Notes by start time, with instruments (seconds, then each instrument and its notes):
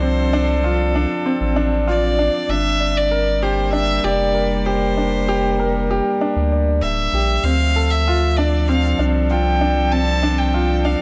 Already playing: analog synth bass C2, string quartet F3 C4 D4 A4, grand piano C4 D4 F4, violin C5
0.02 grand piano C4
0.33 grand piano D4
0.64 grand piano F4
0.95 grand piano D4
1.26 grand piano C4
1.41 analog synth bass A1
1.56 grand piano D4
1.87 grand piano F4, violin D5
2.19 grand piano D4
2.49 analog synth bass G1, string quartet G3, grand piano D4, violin E5
2.80 grand piano D5
2.97 violin D5
3.11 string quartet A#4, grand piano A#4
3.43 string quartet A#3, grand piano G4, violin C5
3.73 grand piano D4, violin E5
4.04 analog synth bass F1, grand piano G4, violin D5
4.34 grand piano A#4
4.66 grand piano G4, violin C5
4.97 grand piano D4
5.29 grand piano G4
5.60 grand piano A#4
5.91 grand piano G4
6.21 grand piano D4
6.36 analog synth bass D2
6.52 grand piano D5
6.82 analog synth bass D1, grand piano D5, violin E5
7.13 analog synth bass A#1, grand piano G4
7.43 analog synth bass D2, string quartet F3, grand piano C4, violin F5
7.76 grand piano A4
7.91 violin E5
8.08 grand piano F4
8.37 grand piano D4, violin D5
8.42 string quartet C4
8.49 string quartet A4
8.62 string quartet D4
8.68 grand piano C4, violin F5
8.99 analog synth bass C2, grand piano D4
9.30 grand piano F4, violin G5
9.61 grand piano D4
9.92 grand piano C4, violin A5
10.23 grand piano D4
10.39 violin G5
10.54 grand piano F4
10.85 grand piano D4, violin F5